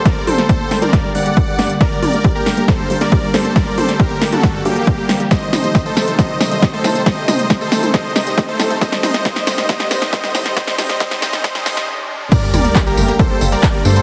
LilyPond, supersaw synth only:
\new Staff \with { instrumentName = "Supersaw synth" } { \time 4/4 \key g \minor \tempo 4 = 137 <bes' d''>8 <a' c''>8 <a' c''>8. <bes' d''>8. <d'' fis''>4~ <d'' fis''>16 r16 | <bes' d''>8 <bes' d''>8. <g' bes'>8. <a' c''>8. <bes' d''>8. <a' c''>8 | <bes' d''>8 <a' c''>8 <g' bes'>8. <fis' a'>8. <bes g'>4~ <bes g'>16 r16 | <c'' ees''>8 <c'' ees''>8. <a' c''>8. <c'' ees''>8 <c'' ees''>8. <a' c''>8. |
<c'' ees''>8 <c'' ees''>8. <a' c''>8. <c'' ees''>8 <c'' ees''>8. <a' c''>8. | <c'' ees''>8 <c'' ees''>8 <c'' ees''>8 <c'' ees''>8 <c'' ees''>8 <c'' ees''>8 <c'' ees''>8 <c'' ees''>8 | <c'' ees''>8 <c'' ees''>8 <c'' ees''>8 <c'' ees''>8 <c'' ees''>8 <c'' ees''>8 r4 | <bes' d''>8 <bes' d''>8. <g' bes'>8. <a' c''>8. <bes' d''>8. <a' c''>8 | }